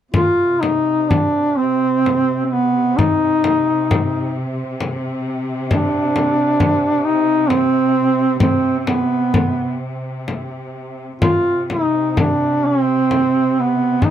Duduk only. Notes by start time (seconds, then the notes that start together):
0.14 F4
0.60 D#4
1.09 D4
1.57 C4
2.45 C4
2.51 B3
2.97 D#4
5.69 D4
7.04 D#4
7.48 C4
8.39 C4
8.79 C4
8.86 B3
11.22 F4
11.71 D#4
12.12 D#4
12.20 D4
12.66 C4
13.60 B3
14.04 D#4